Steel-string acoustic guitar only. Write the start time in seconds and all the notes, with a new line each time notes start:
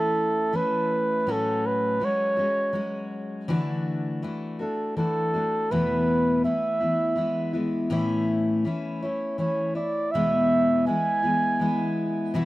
Already playing: E3 A3 C#4 E4
0.52 E3 A3 C#4 E4
1.27 A2 F#3 C#4 F#4
2.00 F#3 G#3 C#4 F#4
2.37 G#3 C#4 F#4
2.73 F#3 G#3 C#4 F#4
3.48 D3 E3 A3 D4 F#4
4.22 E3 A3 D4 F#4
4.59 A3 D4 F#4
4.97 E3 A3 D4 F#4
5.34 A3 D4 F#4
5.71 E2 B2 E3 A3 B3 E4
6.44 E3 A3 B3 E4
6.80 E3 A3 B3 E4
7.16 E3 G#3 B3 E4
7.53 E3 G#3 B3 E4
7.90 A2 E3 A3 C#4 E4
8.65 E3 A3 C#4 E4
9.02 A3 C#4 E4
9.38 E3 A3 C#4 E4
9.75 A3 E4
10.14 E2 B2 E3 G#3 B3 E4
10.86 E3 G#3 B3 E4
11.23 E3 G#3 B3 E4
11.60 E3 G#3 B3 E4
12.34 B2 E3 B3 E4 F#4